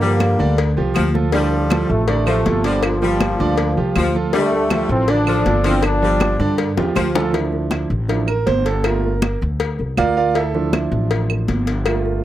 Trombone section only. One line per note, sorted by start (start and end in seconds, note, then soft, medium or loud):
0.00 0.54 D3 medium
0.00 0.55 A#3 loud
1.33 1.85 A2 medium
1.33 1.85 F3 medium
1.89 2.27 C3 medium
1.89 2.27 A3 loud
2.28 2.63 C3 medium
2.28 2.62 A3 loud
2.65 2.83 A#2 medium
2.65 2.84 G3 medium
2.84 4.11 A#2 medium
2.84 4.11 F3 loud
4.35 4.87 D3 medium
4.35 4.86 A3 loud
4.91 5.08 E3 medium
4.91 5.08 C4 loud
5.09 5.65 F3 medium
5.09 5.65 D4 loud
5.66 5.83 E3 medium
5.66 5.83 C4 loud
5.84 6.55 F3 medium
5.84 6.55 D4 loud